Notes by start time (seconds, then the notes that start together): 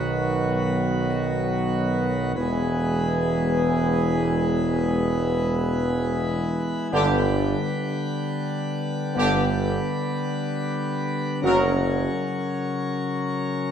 Already playing: B1 D#3 F#3 B3 F#4 B4
2.35 E1 E3 G#3 B3 G#4 B4
6.91 G1 D3 G3 B3 G4 B4
9.14 G1 D3 B3 G4
11.42 F#1 C#3 F#3 C#4 A#4